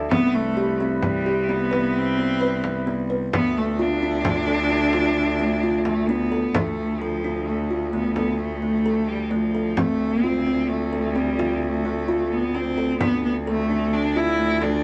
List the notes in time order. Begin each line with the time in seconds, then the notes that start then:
Already playing: D2 E5
0.11 C2 B3 C4 B4 B5, frame drum
0.35 A3, frame drum
0.57 G4
0.81 C4
1.03 G3, frame drum
1.26 G4, frame drum
1.49 B3
1.71 B4, frame drum
1.98 C4
2.18 B3
2.41 B4, frame drum
2.64 frame drum
2.87 B3, frame drum
3.10 B4
3.33 D2 B3 D4 F4 E5, frame drum
3.57 A3
3.79 D4 F4, frame drum
4.02 D4
4.25 frame drum
4.48 A4
4.71 D4, frame drum
4.93 F4, frame drum
5.17 frame drum
5.40 A3
5.63 F4
5.85 A3, frame drum
6.09 B3 D4
6.32 A4, frame drum
6.54 D2 A3 D4, frame drum
7.00 F3 A4
7.24 D4, frame drum
7.48 A3
7.71 F4
7.93 A3 B3
8.16 B3 A4, frame drum
8.39 A3, frame drum
8.62 A3
8.86 A4
9.08 G3
9.31 F3 A3
9.55 A4
9.77 D2 A3 C4, frame drum
10.24 C4 F4
10.47 C4, frame drum
10.69 A3
10.93 A4
11.15 G3 C4
11.39 F4, frame drum
11.62 A3, frame drum
11.85 A3
12.08 F4
12.32 B3
12.55 C4
12.78 A4
12.99 D2 B3 D4, frame drum
13.24 B3
13.47 A3 A4
13.70 D4, frame drum
13.93 D4
14.16 E4 F4
14.39 A3
14.62 D4 A4, frame drum